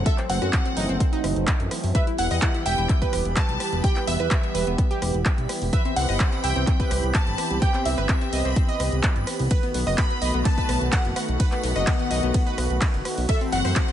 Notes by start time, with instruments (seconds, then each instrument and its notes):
Already playing: supersaw synth E3 F#3 A3 C4
0.06 synth pluck A4 E5, violin section E5, kick, closed hi-hat
0.18 synth pluck C4, clap, closed hi-hat
0.29 analog synth bass F#1, synth pluck C4 F#5, violin section F#5, open hi-hat
0.42 analog synth bass F#2, synth pluck F#4, cross-stick, closed hi-hat
0.53 synth pluck C4, kick, clap, closed hi-hat
0.65 synth pluck C4, closed hi-hat
0.77 analog synth bass F#1, synth pluck D#4, open hi-hat
0.89 analog synth bass F#1, synth pluck C4, closed hi-hat
1.00 synth pluck C4, kick, closed hi-hat
1.13 synth pluck D#4, closed hi-hat
1.24 analog synth bass F#1, cross-stick, open hi-hat
1.36 analog synth bass F#1, closed hi-hat
1.47 kick, clap, closed hi-hat
1.60 analog synth bass F#2, closed hi-hat
1.71 cross-stick, open hi-hat
1.84 analog synth bass F#2, open hi-hat
1.95 supersaw synth G3 B3 G4, synth pluck B4 E5, violin section E5, synth texture B5 B6, kick, closed hi-hat
2.07 synth pluck E4, closed hi-hat
2.18 analog synth bass E1, synth pluck E4 F#5, violin section F#5, open hi-hat
2.31 analog synth bass E2, synth pluck D#5, cross-stick, open hi-hat
2.42 synth pluck E4, kick, clap, closed hi-hat
2.54 synth pluck E4, closed hi-hat
2.66 analog synth bass E1, synth pluck E5 G5, violin section G5, open hi-hat
2.78 analog synth bass E1, synth pluck E4, closed hi-hat
2.89 synth pluck E4, kick, clap, closed hi-hat
3.02 synth pluck B4, kick, closed hi-hat
3.13 analog synth bass E1, cross-stick, open hi-hat
3.25 analog synth bass E1, closed hi-hat
3.36 violin section A5, synth pluck A5, kick, clap, closed hi-hat
3.49 analog synth bass B1, closed hi-hat
3.60 cross-stick, open hi-hat
3.73 analog synth bass E1, closed hi-hat
3.84 synth pluck G4 G5, violin section G5, kick, closed hi-hat
3.96 synth pluck B3, clap, closed hi-hat
4.07 analog synth bass E1, synth pluck B3 E5, violin section E5, open hi-hat
4.20 analog synth bass E2, synth pluck B4, cross-stick, closed hi-hat
4.31 synth pluck B3, kick, clap, closed hi-hat
4.43 synth pluck B3, closed hi-hat
4.55 analog synth bass E1, synth pluck B4, open hi-hat
4.67 analog synth bass E1, synth pluck B3, closed hi-hat
4.78 synth pluck B3, kick, closed hi-hat
4.91 synth pluck G4, closed hi-hat
5.02 analog synth bass E1, cross-stick, open hi-hat
5.14 analog synth bass E1, closed hi-hat
5.25 kick, clap, closed hi-hat
5.38 analog synth bass B1, closed hi-hat
5.49 cross-stick, open hi-hat
5.62 analog synth bass E1, open hi-hat
5.73 supersaw synth B3 C4 G4, synth pluck B4 E5, violin section E5, kick, closed hi-hat
5.85 synth pluck C4, closed hi-hat
5.96 analog synth bass C2, synth pluck C4 F#5, violin section F#5, open hi-hat
6.09 analog synth bass G1, synth pluck D#5, cross-stick, open hi-hat
6.20 synth pluck C4, kick, clap, closed hi-hat
6.32 synth pluck C4, closed hi-hat
6.44 analog synth bass C2, synth pluck E5 G5, violin section G5, open hi-hat
6.56 analog synth bass C2, synth pluck C4, closed hi-hat
6.67 synth pluck C4, kick, clap, closed hi-hat
6.80 synth pluck B4, kick, closed hi-hat
6.91 analog synth bass C2, cross-stick, open hi-hat
7.03 analog synth bass C2, closed hi-hat
7.14 violin section A5, synth pluck A5, kick, clap, closed hi-hat
7.27 analog synth bass G1, closed hi-hat
7.38 cross-stick, open hi-hat
7.51 analog synth bass C2, closed hi-hat
7.62 synth pluck G4 G5, violin section G5, kick, closed hi-hat
7.74 synth pluck C4, clap, closed hi-hat
7.85 analog synth bass C2, synth pluck C4 E5, violin section E5, open hi-hat
7.98 analog synth bass G1, synth pluck B4, cross-stick, closed hi-hat
8.09 synth pluck C4, kick, clap, closed hi-hat
8.21 synth pluck C4, closed hi-hat
8.33 analog synth bass C2, synth pluck D#5, open hi-hat
8.45 analog synth bass C2, synth pluck C4, closed hi-hat
8.56 synth pluck C4, kick, closed hi-hat
8.69 synth pluck D#5, closed hi-hat
8.80 analog synth bass C2, cross-stick, open hi-hat
8.92 analog synth bass C2, closed hi-hat
9.03 kick, clap, closed hi-hat
9.16 analog synth bass G1, closed hi-hat
9.27 cross-stick, open hi-hat
9.39 analog synth bass C2, open hi-hat
9.51 supersaw synth D#3 A3 F#4, synth pluck B4, kick, closed hi-hat, ride
9.63 synth pluck B3, closed hi-hat
9.74 analog synth bass B1, synth pluck B3, open hi-hat
9.87 analog synth bass F#1, synth pluck D#5, cross-stick, open hi-hat
9.98 synth pluck B3 B5, violin section B5, kick, clap, closed hi-hat, ride
10.10 synth pluck B3, closed hi-hat
10.22 analog synth bass B1, synth pluck D#5, open hi-hat
10.34 analog synth bass B1, synth pluck B3, closed hi-hat
10.45 synth pluck B3 A5, violin section A5, kick, clap, closed hi-hat, ride
10.58 synth pluck B4, kick, closed hi-hat
10.69 analog synth bass B1, cross-stick, open hi-hat
10.81 analog synth bass B1, closed hi-hat
10.92 synth pluck F#5, violin section F#5, kick, clap, closed hi-hat, ride
11.05 analog synth bass F#1, closed hi-hat
11.16 violin section F#5, synth pluck F#5, cross-stick, open hi-hat
11.29 analog synth bass B1, closed hi-hat
11.40 synth pluck B4, kick, closed hi-hat, ride
11.52 synth pluck B3, clap, closed hi-hat
11.63 analog synth bass B1, synth pluck B3, open hi-hat
11.76 analog synth bass F#1, synth pluck D#5, cross-stick, closed hi-hat
11.87 synth pluck B3, kick, clap, closed hi-hat, ride
11.99 synth pluck B3, closed hi-hat
12.11 analog synth bass B1, synth pluck D#5, open hi-hat
12.23 analog synth bass B1, synth pluck B3, closed hi-hat
12.34 synth pluck B3, kick, closed hi-hat, ride
12.47 synth pluck B4, closed hi-hat
12.58 analog synth bass B1, cross-stick, open hi-hat
12.70 analog synth bass B1, closed hi-hat
12.81 kick, clap, closed hi-hat, ride
12.94 analog synth bass F#1, closed hi-hat
13.05 cross-stick, open hi-hat
13.18 analog synth bass B1, open hi-hat
13.29 supersaw synth E3 A3 C4, synth pluck A4 E5, violin section E5, kick, closed hi-hat, ride
13.41 synth pluck C4, closed hi-hat
13.52 analog synth bass F#1, synth pluck C4 F#5, violin section F#5, open hi-hat
13.65 analog synth bass F#2, synth pluck C5, cross-stick, open hi-hat
13.76 synth pluck C4, kick, clap, closed hi-hat, ride
13.88 synth pluck C4, closed hi-hat